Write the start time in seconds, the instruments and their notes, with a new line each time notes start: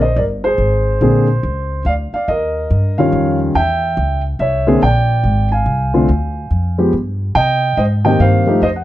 Already playing: upright bass A#1
0.02 grand piano C5 D#5
0.16 upright bass G1, grand piano A#4 D5
0.44 grand piano G#4 C5
0.58 upright bass G#1
1.01 upright bass A#1, grand piano D3 A#3 C4 G#4
1.43 upright bass C#2
1.85 upright bass D2, grand piano D5 F5
2.13 grand piano D5 F5, muted upright bass stroke
2.28 upright bass D#2, grand piano A#4 D#5
2.71 upright bass G2
2.98 grand piano D#3 G3 C#4 F4 C#5 F5
3.12 upright bass F2
3.55 upright bass E2, grand piano E5 G5
3.97 upright bass C#2
4.39 upright bass C2, grand piano C#5 E5
4.67 grand piano D3 A#3 C4 G#4
4.82 upright bass A#1, grand piano D5 G5
5.24 upright bass G#1
5.52 grand piano F5 G#5
5.66 upright bass C2
5.94 grand piano D3 A3 C4 F4
6.09 upright bass D2
6.51 upright bass F2
6.78 grand piano F3 G#3 B3 G4
6.93 upright bass G2
7.35 upright bass C3, grand piano D#5 G5
7.77 upright bass G#2, grand piano C5 D#5
8.05 grand piano D#3 A#3 C4 G4 D#5 G5
8.20 upright bass G2, grand piano C5 F5
8.46 grand piano F3 A3 D#4 G4
8.62 upright bass F2, grand piano C5 D#5
8.76 grand piano F#5